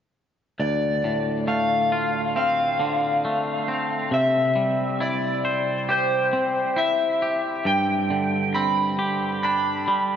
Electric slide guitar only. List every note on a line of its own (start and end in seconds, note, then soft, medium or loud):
0.60 1.48 D5 medium
1.48 2.36 F5 soft
2.37 4.09 F5 medium
4.14 5.04 E5 medium
5.02 5.93 D5 medium
5.90 6.81 C5 medium
6.78 7.41 E5 medium
7.67 8.58 G5 medium
8.55 9.39 B5 medium
9.43 10.16 B5 medium